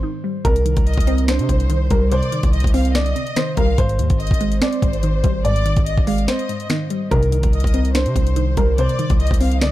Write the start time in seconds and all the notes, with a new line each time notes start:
Already playing: G#2 G#3 C4 C5
0.03 D#3
0.24 G3
0.45 C2 C3 A#4, kick, closed hi-hat
0.56 closed hi-hat
0.66 D#3, closed hi-hat
0.77 C2, kick, closed hi-hat
0.86 D#5, closed hi-hat
0.94 closed hi-hat
0.98 C2, kick, closed hi-hat
1.07 C4, closed hi-hat
1.18 closed hi-hat
1.28 D4 C5, finger snap, snare, closed hi-hat
1.39 C3, closed hi-hat
1.49 C2 C3, kick, closed hi-hat
1.60 closed hi-hat
1.70 D#3, closed hi-hat
1.90 C2 G3 A#4, kick, closed hi-hat
2.11 C3 C5 D5, closed hi-hat
2.23 closed hi-hat
2.32 D#3, closed hi-hat
2.43 C2, kick, closed hi-hat
2.53 D#5, closed hi-hat
2.60 closed hi-hat
2.64 C2, kick, closed hi-hat
2.74 C4 F5, open hi-hat
2.85 closed hi-hat
2.95 D3 D5 D#5, finger snap, snare, closed hi-hat
3.06 closed hi-hat
3.16 C3, closed hi-hat
3.27 closed hi-hat
3.36 D#3 C5, finger snap, snare, closed hi-hat
3.57 C2 G3 A#4 F5, kick, closed hi-hat
3.78 G#1 G#2 C5, kick, closed hi-hat
3.89 closed hi-hat
3.99 D#2 D#3, closed hi-hat
4.10 G#1, kick, closed hi-hat
4.20 D#5, closed hi-hat
4.27 closed hi-hat
4.31 G#1, kick, closed hi-hat
4.41 G#3, closed hi-hat
4.52 closed hi-hat
4.61 C4 C5 D5, finger snap, snare, closed hi-hat
4.73 closed hi-hat
4.82 G#1 G#2, kick, closed hi-hat
4.93 closed hi-hat
5.03 D#3, closed hi-hat
5.23 G#1 G3 C5, kick, closed hi-hat
5.45 G#2 D5, closed hi-hat
5.56 closed hi-hat
5.66 D#3, closed hi-hat
5.76 G#1, kick, closed hi-hat
5.86 D#5, closed hi-hat
5.97 G#1, kick
6.07 G#3 F5, open hi-hat
6.18 closed hi-hat
6.28 C4 C5 D#5, finger snap, snare, closed hi-hat
6.39 closed hi-hat
6.49 G#2, closed hi-hat
6.60 closed hi-hat
6.70 D#3, finger snap, snare, closed hi-hat
6.90 G3, closed hi-hat
7.11 C2 G2 C3 D#3 A#4, kick, closed hi-hat
7.23 closed hi-hat
7.32 D#3, closed hi-hat
7.43 C2, kick, closed hi-hat
7.53 D#5, closed hi-hat
7.60 closed hi-hat
7.64 C2, kick, closed hi-hat
7.74 C4, closed hi-hat
7.85 closed hi-hat
7.95 D4 C5, finger snap, snare, closed hi-hat
8.06 C3, closed hi-hat
8.16 C2 C3, kick, closed hi-hat
8.27 closed hi-hat
8.36 D#3, closed hi-hat
8.57 C2 G3 A#4, kick, closed hi-hat
8.78 C3 C5 D5, closed hi-hat
8.89 closed hi-hat
8.99 D#3, closed hi-hat
9.10 C2, kick, closed hi-hat
9.20 D#5, closed hi-hat
9.27 closed hi-hat
9.31 C2, kick, closed hi-hat
9.41 C4 F5, open hi-hat
9.52 closed hi-hat
9.61 D3 D5 D#5, finger snap, snare, closed hi-hat